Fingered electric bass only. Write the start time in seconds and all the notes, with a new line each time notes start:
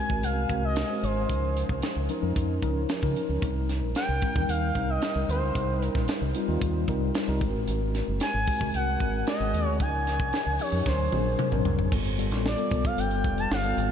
0.10 G#1
0.23 C2
0.50 C2
1.03 G#1
1.29 C#2
1.69 C2
1.96 C#2
2.23 F2
2.36 F2
2.62 C#2
3.03 C#3
3.29 C#2
3.42 C2
3.82 A#1
4.09 C2
4.36 D#2
4.49 D#2
4.75 C2
5.15 C2
5.29 D2
5.42 C#2
5.55 C2
5.95 A#1
6.22 C2
6.48 D#2
6.62 D#2
6.88 C2
7.28 C2
7.41 G#1
7.55 A1
7.68 G#1
8.08 F#1
8.34 G#1
8.61 C2
8.74 C2
9.00 G#1
9.40 G#1
9.54 D#2
9.67 D2
9.80 C#2
10.20 C2
10.46 C#2
10.72 F2
10.86 D2
11.12 A#1
11.52 A#1
11.66 C2
11.78 G#1
11.92 G1
12.32 A1
12.71 B1
12.98 G1
13.24 F1
13.51 G1
13.77 G#1